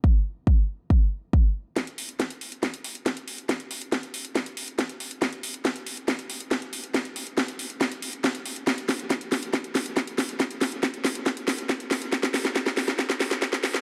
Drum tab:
HH |----------------|xxoxxxoxxxoxxxox|xxoxxxoxxxoxxxox|xxoxxxoxxxoxxxox|
SD |----------------|o---o---o---o---|o---o---o---o---|o---o---o---o---|
BD |o---o---o---o---|o---o---o---o---|o---o---o---o---|o---o---o---o---|

HH |xxoxxxoxxxoxxxox|xxoxxxoxxxoxxxox|xxoxxxoxxxoxxxox|xxoxxxoxxxoxxxox|
SD |o---o---o---o---|o-o-o-o-o-o-o-o-|o-o-o-o-o-o-o-o-|oooooooooooooooo|
BD |o---o---o---o---|o---o---o---o---|o---o---o---o---|o---o---o---o---|